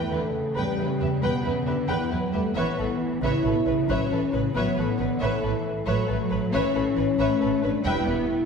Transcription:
Already playing: cello section E3, french horn section A3, violin section B4
0.11 double bass section E2, cello section D3, violin section E4 B4, viola section B4
0.34 cello section C#3
0.55 double bass section E2, french horn section G3, viola section B4, violin section B4 G5
0.78 double bass section E2, violin section E4 B4, viola section B4
1.00 double bass section E2, violin section G4 E5, viola section B4
1.22 double bass section E2, cello section B2, french horn section B3, viola section B4, violin section B4 G5
1.44 double bass section E2, cello section C#3, violin section E4 B4, viola section B4
1.66 double bass section E2, cello section D3, violin section G4 E5, viola section B4
1.88 double bass section E2, cello section E3, violin section B4 G5, viola section B4
2.10 double bass section E2, cello section F#3, violin section E4 B4, viola section B4
2.33 double bass section E2, cello section G3, french horn section A3, violin section G4 E5, viola section B4
2.54 double bass section A1, cello section E3, french horn section B3, viola section B4, violin section C#5 E5
2.78 double bass section A1, violin section A4 B4, viola section B4
3.21 double bass section A1, cello section C#3, french horn section E4, viola section B4, violin section C#5 E5
3.44 double bass section A1, cello section B2, violin section A4 B4, viola section B4
3.66 double bass section A1, cello section C#3, viola section B4, violin section B4 C#5
3.88 double bass section A1, cello section F#3, french horn section C#4, viola section B4, violin section C#5 E5
4.10 double bass section A1, cello section E3, violin section A4 B4, viola section B4
4.32 double bass section A1, cello section C#3, viola section B4, violin section B4 C#5
4.53 double bass section A1, cello section F#3, french horn section B3, viola section B4, violin section C#5 E5
4.76 double bass section A1, cello section E3, violin section A4 B4, viola section B4
4.98 double bass section A1, cello section D3, violin section B4 C#5, viola section B4
5.20 double bass section A1, cello section E3, french horn section A3, viola section B4, violin section C#5 E5
5.42 double bass section A1, violin section A4 B4, viola section B4
5.85 double bass section A1, cello section F#3, french horn section A3, viola section B4, violin section C#5 E5
6.07 double bass section A1, violin section A4 B4, viola section B4
6.30 double bass section A1, violin section B4 C#5, viola section B4
6.52 double bass section A1, cello section E3, french horn section C#4, viola section B4, violin section C#5 E5
6.75 double bass section A1, violin section A4 B4, viola section B4
6.96 double bass section A1, viola section B4, violin section B4 C#5
7.19 double bass section A1, cello section A3, viola section B4, violin section C#5 E5
7.40 double bass section A1, violin section A4 B4, viola section B4
7.62 double bass section A1, french horn section D4, viola section B4, violin section B4 C#5
7.84 double bass section E1, cello section G3, french horn section E4, viola section B4, violin section E5 G5
8.06 double bass section E1, cello section B3, violin section G4 B4, viola section B4
8.28 cello section A3

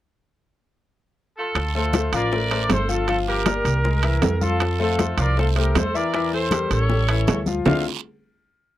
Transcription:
1.37 horn section F4 A4
1.55 upright bass D2, high bongo, high conga, high timbale, long guiro
1.74 grand piano A3 A4 C5, horn section F4 A4, high bongo, high conga
1.93 grand piano A3 A4 C5, high bongo, high conga, high timbale, low timbale, short guiro
2.12 upright bass A1, grand piano F3 F4 F5, horn section A#4 D5, high bongo, high conga, high timbale, short guiro
2.32 grand piano A3 A4 C5, high bongo, high conga, long guiro
2.51 grand piano A3 A4 C5, high bongo, high conga, high timbale
2.69 upright bass G1, horn section A4 C5, high bongo, low bongo, high conga, high timbale, low timbale, short guiro
2.88 grand piano F3 F4 F5, horn section A4, high conga, short guiro
2.92 horn section F4
3.08 grand piano F3 F4 F5, horn section F4 A4, high bongo, high conga, high timbale, long guiro
3.27 horn section G4 A#4, high bongo, high conga
3.46 grand piano A#3 A#4 D5, high bongo, high conga, high timbale, low timbale, short guiro
3.65 upright bass C2, high bongo, high conga, high timbale, short guiro
3.84 grand piano G#3 G#4 A#4, high bongo, high conga, long guiro
4.03 grand piano E3 E4 E5, high bongo, high conga, high timbale
4.22 upright bass F2, high bongo, low bongo, high conga, high timbale, low timbale, short guiro
4.41 grand piano F3 F4 F5, horn section F4 A4, high conga, short guiro
4.60 high bongo, high conga, high timbale, long guiro
4.80 grand piano A3 A4 C5, horn section F4 A4, high bongo, high conga
4.98 grand piano A3 A4 C5, high bongo, high conga, high timbale, low timbale, short guiro
5.17 upright bass C2, grand piano F3 F4 F5, horn section A#4 D5, high bongo, high conga, high timbale, short guiro
5.37 grand piano A3 A4 C5, horn section F4 A4, high bongo, high conga, long guiro
5.56 grand piano A3 A4 C5, horn section G4 A#4, high bongo, high conga, high timbale
5.75 upright bass E2, horn section A4 C5, high bongo, low bongo, high conga, high timbale, low timbale, short guiro
5.94 grand piano E3 E4 E5, horn section A#4 D5, high conga, short guiro
6.14 grand piano E3 E4 E5, high bongo, high conga, high timbale, long guiro
6.32 horn section A4 C5, high bongo, high conga
6.51 grand piano G3 G4 A#4, high bongo, high conga, high timbale, low timbale, short guiro
6.70 upright bass A1, horn section A4 C#5, high bongo, high conga, high timbale, short guiro
6.90 grand piano G3 G4 A4, high bongo, high conga, long guiro
7.09 grand piano E3 E4 E5, high conga, high timbale
7.27 upright bass D2, low bongo, high conga, high timbale, low timbale, short guiro
7.46 grand piano F3 F4 F5, low bongo, high conga, short guiro
7.65 upright bass D2, grand piano D3 A3 C4 D4 E4 F4, horn section F5, low bongo, low conga, low timbale, long guiro

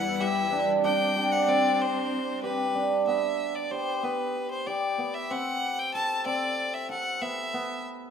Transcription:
Already playing: string section E2 G3 E4 B4, hammered dulcimer B3 D4 G4, violin F#5
0.20 hammered dulcimer G4, violin E5
0.52 hammered dulcimer D4
0.84 string section C4 D4, hammered dulcimer D4, violin G5
1.16 hammered dulcimer G4
1.32 violin F#5
1.48 hammered dulcimer C4, violin D5
1.81 violin C5
2.43 hammered dulcimer G4, violin B4
2.75 hammered dulcimer D4
3.07 hammered dulcimer B3, violin E5
3.55 violin D5
3.71 hammered dulcimer G4, violin C5
4.03 hammered dulcimer B3, violin B4
4.51 violin C5
4.66 hammered dulcimer G4, violin D5
4.98 hammered dulcimer B3
5.14 violin E5
5.30 hammered dulcimer C4, violin F#5
5.79 violin G5
5.94 hammered dulcimer A4, violin A5
6.26 hammered dulcimer C4, violin D5
6.74 violin E5
6.89 hammered dulcimer A4, violin F#5
7.21 hammered dulcimer B3, violin E5
7.54 hammered dulcimer B3

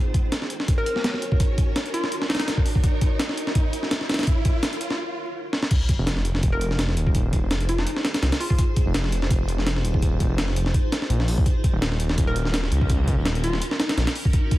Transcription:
Already playing: ambient pad D#4 F#4 A#4 C#5, riser
0.14 kick, closed hi-hat
0.32 snare, closed hi-hat
0.42 snare
0.50 closed hi-hat
0.60 snare
0.68 kick, closed hi-hat
0.78 synth pluck A#4
0.86 closed hi-hat
0.96 snare
1.04 snare, closed hi-hat
1.14 snare
1.22 closed hi-hat
1.32 kick
1.40 kick, closed hi-hat
1.58 kick, closed hi-hat
1.76 snare, closed hi-hat
1.86 closed hi-hat
1.94 synth pluck F4, closed hi-hat
2.04 snare
2.12 closed hi-hat
2.22 snare
2.29 synth pluck D#4, snare, closed hi-hat
2.35 snare, closed hi-hat
2.39 synth pluck D#4, snare, closed hi-hat
2.48 snare, closed hi-hat
2.57 kick
2.66 open hi-hat
2.75 kick
2.84 kick, closed hi-hat
3.01 kick, closed hi-hat
3.19 snare, closed hi-hat
3.29 snare
3.38 closed hi-hat
3.47 snare
3.55 kick, closed hi-hat
3.73 closed hi-hat
3.83 snare
3.91 snare, closed hi-hat
4.01 snare
4.09 snare, closed hi-hat
4.14 snare, closed hi-hat
4.19 snare, closed hi-hat
4.23 snare, closed hi-hat
4.27 kick, closed hi-hat
4.45 kick, closed hi-hat
4.63 snare, closed hi-hat
4.73 closed hi-hat
4.81 closed hi-hat
4.90 snare
5.53 snare
5.63 snare
5.71 ambient pad D#4 F4 G#4 C5, kick, closed hi-hat, crash, sub drop
5.89 kick, closed hi-hat
5.98 detuned saw bass F1
6.07 snare, closed hi-hat
6.17 snare
6.25 closed hi-hat
6.35 snare
6.43 detuned saw bass F1, kick, closed hi-hat
6.52 synth pluck A#4
6.61 closed hi-hat
6.71 snare
6.79 snare, closed hi-hat
6.89 snare
6.97 detuned saw bass D#1, closed hi-hat
7.07 kick
7.15 kick, closed hi-hat
7.33 kick, closed hi-hat
7.42 detuned saw bass F1
7.51 snare, closed hi-hat
7.60 closed hi-hat
7.69 synth pluck F4, closed hi-hat
7.78 synth pluck D#4, snare
7.87 closed hi-hat
7.96 snare
8.05 snare, closed hi-hat
8.14 snare, closed hi-hat
8.22 detuned saw bass C2, snare, closed hi-hat
8.32 snare, closed hi-hat
8.40 synth pluck F4, open hi-hat
8.50 synth pluck F4, kick
8.59 kick, closed hi-hat
8.76 kick, closed hi-hat
8.86 detuned saw bass F1
8.94 snare, closed hi-hat
9.04 snare
9.12 closed hi-hat
9.22 snare
9.30 detuned saw bass F1, kick, closed hi-hat
9.48 closed hi-hat
9.58 snare
9.67 snare, closed hi-hat
9.76 snare
9.84 detuned saw bass D#1, closed hi-hat
9.94 kick
10.02 kick, closed hi-hat
10.20 kick, closed hi-hat
10.29 detuned saw bass F1
10.38 snare, closed hi-hat
10.48 snare
10.56 closed hi-hat
10.66 snare
10.74 kick, closed hi-hat
10.92 snare, closed hi-hat
11.02 snare
11.10 detuned saw bass A#1, closed hi-hat
11.20 snare
11.28 open hi-hat
11.38 detuned saw bass C2, kick
11.46 ambient pad C#4 F#4 A#4, kick, closed hi-hat
11.64 kick, closed hi-hat
11.73 detuned saw bass D#1
11.82 snare, closed hi-hat
11.92 snare
12.00 closed hi-hat
12.09 snare
12.18 detuned saw bass D#1, kick, closed hi-hat
12.27 synth pluck A#4
12.36 closed hi-hat
12.45 snare
12.54 snare, closed hi-hat
12.64 snare
12.71 detuned saw bass C#2, closed hi-hat
12.81 kick
12.90 kick, closed hi-hat
13.08 kick, closed hi-hat
13.17 detuned saw bass D#1
13.25 snare, closed hi-hat
13.35 closed hi-hat
13.44 synth pluck F4, closed hi-hat
13.53 snare
13.62 closed hi-hat
13.71 snare
13.80 synth pluck D#4, snare, closed hi-hat
13.89 synth pluck D#4, snare, closed hi-hat
13.97 detuned saw bass A#1, snare, closed hi-hat
14.07 snare, closed hi-hat
14.16 open hi-hat
14.25 kick
14.33 kick, closed hi-hat
14.51 kick, closed hi-hat

